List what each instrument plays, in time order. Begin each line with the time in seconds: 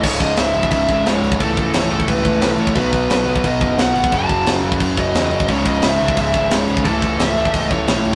0.03 picked electric bass C#1, overdriven electric guitar C#2 G#2 C#3, lead electric guitar C#5, kick, crash
0.20 picked electric bass C#1, lead electric guitar D#5, kick, crash
0.37 picked electric bass C#1, lead electric guitar E5, snare, crash
0.54 picked electric bass C#1, distorted electric guitar G#2 C#3, crash
0.58 distorted electric guitar C#2
0.63 kick
0.71 picked electric bass C#1, lead electric guitar E5, kick, crash
0.88 picked electric bass G#1, overdriven electric guitar C#2 G#2 C#3, kick, crash
1.04 picked electric bass C#1, overdriven electric guitar C#2 G#2 C#3, lead electric guitar C#5, snare, crash
1.22 picked electric bass C#1, crash
1.32 kick
1.38 picked electric bass C#1, overdriven electric guitar A2 E3, lead electric guitar A4, kick, crash
1.42 overdriven electric guitar A3
1.57 picked electric bass C#1, lead electric guitar A4, kick, crash
1.73 picked electric bass C#1, lead electric guitar C#5, snare, crash
1.90 picked electric bass C#1, distorted electric guitar E3 A3, lead electric guitar A4, crash
1.94 distorted electric guitar A2
2.00 kick
2.08 picked electric bass C#1, lead electric guitar B4, kick, crash
2.23 picked electric bass C#1, overdriven electric guitar A2 E3 A3, kick, crash
2.40 picked electric bass B1, overdriven electric guitar A2 E3 A3, lead electric guitar B4, snare, crash
2.58 picked electric bass A1, lead electric guitar C#5, crash
2.67 kick
2.74 picked electric bass B1, overdriven electric guitar B2 F#3 B3, lead electric guitar B4, kick, crash
2.93 picked electric bass B1, kick, crash
3.09 picked electric bass B1, lead electric guitar B4, snare, crash
3.26 picked electric bass B1, distorted electric guitar B2 F#3 B3, crash
3.36 kick
3.44 picked electric bass B1, lead electric guitar D#5, kick, crash
3.60 picked electric bass F#1, overdriven electric guitar B2 F#3 B3, lead electric guitar D#5, kick, crash
3.77 picked electric bass B1, overdriven electric guitar B2 F#3, lead electric guitar F#5, snare, crash
3.81 overdriven electric guitar B3
3.94 picked electric bass G#1, crash
4.04 kick
4.11 picked electric bass F#1, overdriven electric guitar F#2 C#3, lead electric guitar A5, kick, crash
4.16 overdriven electric guitar F#3
4.29 picked electric bass F#1, kick, crash
4.46 picked electric bass F#1, snare, crash
4.62 picked electric bass F#1, distorted electric guitar C#3 F#3, crash
4.67 distorted electric guitar F#2
4.72 kick
4.80 picked electric bass F#1, kick, crash
4.97 picked electric bass F#1, overdriven electric guitar F#2 C#3 F#3, lead electric guitar D#5, kick, crash
5.14 picked electric bass E2, overdriven electric guitar F#2 C#3 F#3, snare, crash
5.31 picked electric bass F#1, crash
5.40 kick
5.48 picked electric bass C#1, overdriven electric guitar C#2 G#2 C#3, lead electric guitar C#5, kick, crash
5.65 picked electric bass C#1, lead electric guitar D#5, kick, crash
5.82 picked electric bass C#1, lead electric guitar E5, snare, crash
5.99 picked electric bass C#1, distorted electric guitar C#2 G#2 C#3, crash
6.08 kick
6.17 picked electric bass C#1, lead electric guitar E5, kick, crash
6.33 picked electric bass G#1, overdriven electric guitar G#2 C#3, kick, crash
6.38 overdriven electric guitar C#2
6.51 picked electric bass C#1, overdriven electric guitar C#2 G#2, lead electric guitar C#5, snare, crash
6.55 overdriven electric guitar C#3
6.68 picked electric bass C#1, crash
6.77 kick
6.84 picked electric bass C#1, overdriven electric guitar A2 E3, lead electric guitar A4, kick, crash
6.89 overdriven electric guitar A3
7.02 picked electric bass C#1, kick, crash
7.19 picked electric bass C#1, lead electric guitar E5, snare, crash
7.36 picked electric bass C#1, distorted electric guitar E3 A3, crash
7.40 distorted electric guitar A2
7.45 kick
7.54 picked electric bass C#1, lead electric guitar D#5, kick, crash
7.70 picked electric bass C#1, overdriven electric guitar A2 E3 A3, lead electric guitar C#5, kick, crash
7.87 picked electric bass B1, overdriven electric guitar A2 E3 A3, snare, crash
8.04 picked electric bass C#1, crash